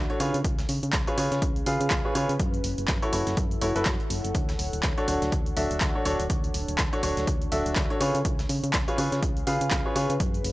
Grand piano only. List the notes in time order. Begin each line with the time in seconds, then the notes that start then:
0.10 D4 F#4 A4 C#5
0.20 F4 G#4 B4 C#5
1.07 F4 G#4 B4 C#5
1.18 F4 G#4 B4 C#5
1.66 F4 G#4 B4 F5
2.05 F4 G#4 B4 C#5
2.15 F4 G#4 B4 C#5
3.02 E4 F#4 A4 C#5
3.13 E4 F#4 A4 C#5
3.61 E4 F#4 A4 C#5
3.76 E4 F#4 A4 B4
4.98 D4 F#4 A4 C#5
5.08 D4 F#4 A4 C#5
5.57 D4 F#4 A4 E5
5.95 D4 F#4 A4 C#5
6.05 D4 F#4 A4 C#5
6.93 D4 F#4 A4 C#5
7.03 D4 F#4 A4 C#5
7.52 D4 F#4 A4 E5
7.90 D4 F#4 A4 C#5
8.01 F4 G#4 B4 C#5
8.88 F4 G#4 B4 C#5
8.98 F4 G#4 B4 C#5
9.47 F4 G#4 B4 F5
9.85 F4 G#4 B4 C#5
9.96 F4 G#4 B4 C#5